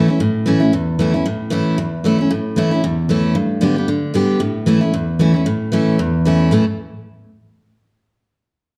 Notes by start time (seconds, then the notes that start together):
Already playing: E2
0.08 C#4 E4
0.20 A2
0.46 E3 A3 C#4 E4
0.60 C#4 E4
0.73 E2
0.99 E3 A3 C#4 E4
1.14 C#4 E4
1.26 A2
1.50 E3 A3 C#4 E4
1.78 E2
2.04 E3 A3 C#4 E4
2.19 C#4 E4
2.31 A2
2.56 E3 A3 C#4 E4
2.71 C#4 E4
2.84 E2
3.09 E3 A3 C#4 E4
3.35 G2
3.61 D3 G3 B3 G4
3.76 B3 G4
3.88 D3
4.14 D3 G3 B3 G4
4.40 A2
4.66 E3 A3 C#4 E4
4.81 C#4 E4
4.94 E2
5.19 E3 A3 C#4 E4
5.34 C#4 E4
5.46 A2
5.72 E3 A3 C#4 E4
5.99 E2
6.25 E3 A3 C#4 E4
6.51 A2 E3 A3 C#4 E4